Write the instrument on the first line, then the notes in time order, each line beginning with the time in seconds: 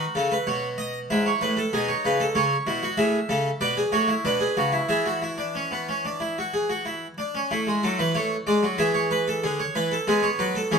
harpsichord
Already playing: F#4
0.15 C#3 A4
0.32 B4
0.47 B2 C#5
0.78 D#5
1.10 G#2 E4 E5
1.26 C#5
1.41 A2 B4
1.57 A4
1.73 B2 D#4 G#4
1.88 C#5
2.05 C#3 B4
2.20 A4
2.35 C#3 C#4 C#5
2.67 B2 E4
2.83 F#4
2.97 A2 G#4 E5
3.29 C#3 A4
3.61 B2 B4 D5
3.77 G#4
3.92 A2 F#4 C#5
4.08 E4
4.25 B2 D4 B4
4.40 G#4
4.57 C#3 F#4
4.72 E4
4.89 E3 G#4 E5
5.06 F#4
5.22 E4
5.38 D4
5.55 C#4
5.71 B3
5.89 C#4
6.05 D4
6.20 E4
6.38 F#4
6.54 G#4
6.70 F#4
6.85 E4
7.18 D4
7.35 C#4
7.51 A3 E4
7.67 G#3
7.83 F#3 A4
7.99 E3 B4
8.15 A3 C#5
8.47 G#3 D5
8.63 F#3
8.78 E3 G#4 E5
8.94 C#5
9.11 B4
9.28 A4
9.44 D3 G#4
9.60 C#5
9.75 E3 B4
9.91 A4
10.07 G#3 B3 G#4
10.23 C#5
10.39 F#3 B4
10.55 A4
10.71 E3 C#4 G#4